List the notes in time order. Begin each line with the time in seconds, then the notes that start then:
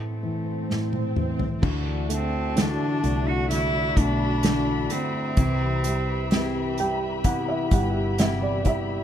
Already playing: A2 A3, swell
0.23 E3
0.69 A2, snare
0.93 high tom
1.16 E3, mid tom
1.39 floor tom
1.62 D2 D3 E3 A3 D4 F#4 D5 E5 A5, kick, crash
2.09 A3 D4 F#4, closed hi-hat
2.14 C4
2.56 D3 E3 A3 D4 F#4, snare, closed hi-hat
2.61 D4
3.03 C2 A3, closed hi-hat
3.28 F#4
3.49 D3 E3 A3 D4 E4 F#4 B5, closed hi-hat
3.96 B1 A3 D4 F#4, kick, closed hi-hat
4.43 D3 E3 A3 D4 F#4, snare, closed hi-hat
4.90 A3 C4 D4 F#4, closed hi-hat
5.37 C2 C3 E3 E4 G4 B4 B5, kick, closed hi-hat
5.84 G3 E4 G4, closed hi-hat
6.31 C3 E3 E4 G4, snare, closed hi-hat
6.78 G3 G5, closed hi-hat
7.24 C3 E3 B3 E4 G4 F#5, kick, closed hi-hat
7.49 E5
7.71 G1 G3 B3 E4 G4 F#5, kick, closed hi-hat
8.18 C3 E3 B3 E4 G4 E5, snare, closed hi-hat
8.42 D5
8.64 G3 B3 E4 G4 E5, kick, closed hi-hat